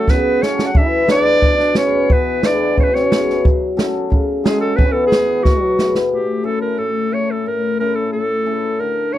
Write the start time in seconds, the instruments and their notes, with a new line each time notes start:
Already playing: hammered dulcimer F#3, trombone A3, clarinet A4
0.08 hammered dulcimer C#3, trombone B3, clarinet B4, kick, snare
0.42 hammered dulcimer C#4 F#4 A4, trombone C#4, clarinet C#5, snare
0.59 snare
0.66 clarinet F#5
0.74 hammered dulcimer E3, trombone E4, clarinet E5, kick
1.08 trombone D4, clarinet D5, snare
1.12 hammered dulcimer B3 E4 G#4
1.42 hammered dulcimer B2, kick
1.57 trombone D4, snare
1.75 hammered dulcimer B3, trombone C#4, clarinet C#5, snare
1.79 hammered dulcimer E4 G#4
2.10 hammered dulcimer E3, trombone B3, clarinet B4, kick
2.43 hammered dulcimer B3 E4 G#4, trombone D4, clarinet D5, snare
2.77 hammered dulcimer B2, trombone C#4, clarinet C#5, kick
2.84 clarinet B4
2.94 trombone C#4, clarinet C#5, snare
3.11 hammered dulcimer B3 E4 G#4, snare
3.30 snare
3.44 hammered dulcimer F#3, kick
3.77 hammered dulcimer C#4 F#4 A4, snare
4.10 hammered dulcimer C#3, kick
4.44 trombone G#3, hammered dulcimer C#4 F#4 A4, clarinet G#4, snare
4.61 clarinet A4
4.76 hammered dulcimer E3, trombone B3, clarinet B4, kick
4.86 trombone C#4
4.92 trombone B3, clarinet A4
5.06 hammered dulcimer B3, clarinet G#4
5.10 hammered dulcimer E4 G#4, snare
5.43 hammered dulcimer B2, trombone F#3, clarinet F#4, kick, snare
5.78 hammered dulcimer B3 E4 G#4, snare
5.95 snare
6.12 hammered dulcimer A2, clarinet G4
6.43 hammered dulcimer C#4 E4 A4, clarinet A4
6.61 clarinet A#4
6.78 hammered dulcimer A2, clarinet A4
7.11 hammered dulcimer C#4 E4 A4, clarinet C#5
7.31 clarinet A4
7.46 hammered dulcimer A2, clarinet A#4
7.80 hammered dulcimer C#4 E4 A4, clarinet A#4
7.95 clarinet A4
8.12 hammered dulcimer A2, clarinet A4
8.46 hammered dulcimer C#4 E4 A4
8.80 hammered dulcimer D3, clarinet A#4
9.13 hammered dulcimer D4 F4 A4, clarinet C#5